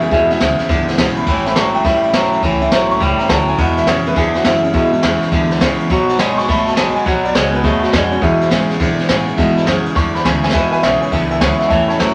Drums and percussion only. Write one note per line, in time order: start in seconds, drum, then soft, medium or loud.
0.01 ride medium
0.11 kick loud
0.11 ride medium
0.30 snare soft
0.30 ride medium
0.40 snare loud
0.40 ride medium
0.59 snare soft
0.59 ride medium
0.69 kick loud
0.69 snare soft
0.69 ride medium
0.88 snare soft
0.88 ride medium
0.98 kick medium
0.98 snare loud
0.98 ride medium
1.16 ride medium
1.27 kick loud
1.27 ride medium
1.46 snare soft
1.46 ride medium
1.56 snare loud
1.56 ride medium
1.74 ride medium
1.84 kick loud
1.84 snare soft
1.84 ride medium
2.03 ride medium
2.13 snare loud
2.13 ride medium
2.32 ride medium
2.43 kick loud
2.43 ride medium
2.61 ride medium
2.71 snare loud
2.71 ride medium
2.91 ride medium
3.00 kick loud
3.00 ride medium
3.19 snare soft
3.19 ride medium
3.29 kick medium
3.29 snare loud
3.29 ride medium
3.47 ride medium
3.58 kick loud
3.58 ride medium
3.77 snare soft
3.77 ride medium
3.87 snare loud
3.87 ride medium
4.06 ride medium
4.16 kick loud
4.16 snare soft
4.16 ride medium
4.35 snare soft
4.35 ride medium
4.44 snare loud
4.44 ride medium
4.64 ride medium
4.74 kick loud
4.74 ride medium
4.93 ride medium
5.03 snare loud
5.03 ride medium
5.22 snare soft
5.22 ride medium
5.32 kick loud
5.32 snare soft
5.32 ride medium
5.51 snare soft
5.51 ride medium
5.61 kick medium
5.61 snare loud
5.61 ride medium
5.80 ride medium
5.90 kick loud
5.90 ride medium
6.09 snare soft
6.09 ride medium
6.19 snare loud
6.19 ride loud
6.39 snare soft
6.39 ride medium
6.48 kick loud
6.48 ride medium
6.67 snare soft
6.67 ride medium
6.77 snare loud
6.77 ride medium
6.96 ride medium
7.06 kick loud
7.06 ride medium
7.25 ride medium
7.35 snare loud
7.35 ride medium
7.54 ride medium
7.64 kick loud
7.64 snare soft
7.64 ride medium
7.83 snare soft
7.83 ride medium
7.93 kick medium
7.93 snare loud
7.93 ride medium
8.12 ride medium
8.22 kick loud
8.22 ride medium
8.41 snare soft
8.41 ride medium
8.51 snare loud
8.51 ride medium
8.70 snare soft
8.70 ride medium
8.80 kick loud
8.80 snare soft
8.80 ride medium
8.99 snare soft
8.99 ride medium
9.09 snare loud
9.09 ride medium
9.28 ride medium
9.38 kick loud
9.38 ride medium
9.57 snare soft
9.57 ride medium
9.67 snare loud
9.67 ride medium
9.86 ride medium
9.96 kick loud
9.96 snare soft
9.96 ride medium
10.15 snare soft
10.15 ride medium
10.25 kick medium
10.25 snare loud
10.25 ride medium
10.44 snare medium
10.50 kick loud
10.50 snare loud
10.54 snare soft
10.54 ride medium
10.73 ride medium
10.83 snare loud
10.83 ride medium
11.02 ride medium
11.12 kick loud
11.12 ride medium
11.31 ride medium
11.41 kick medium
11.41 snare loud
11.41 ride medium
11.60 snare soft
11.60 ride medium
11.70 kick loud
11.70 ride medium
11.90 snare soft
11.90 ride medium
12.00 snare loud
12.00 ride medium